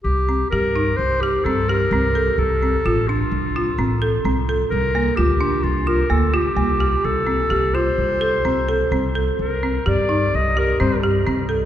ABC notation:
X:1
M:5/4
L:1/8
Q:1/4=128
K:Cdor
V:1 name="Clarinet"
G2 B2 c G A B3 | A3 F6 z | B2 G2 F B A G3 | A3 c6 z |
B2 d2 e B c z3 |]
V:2 name="Marimba"
z C G E2 G C G C A | z C F D2 F C A C A | z B, F D2 F B, F B, G | z C G F2 A C A C A |
z C G E2 G C G C A |]
V:3 name="Upright bass" clef=bass
C,,2 G,,2 C,,2 G,,2 C,,2 | C,,2 A,,,2 C,,2 A,,,2 C,,2 | C,,2 D,,2 C,,2 D,,2 C,,2 | C,,2 C,,2 C,,2 C,,2 C,,2 |
C,,2 G,,2 C,,2 G,,2 C,,2 |]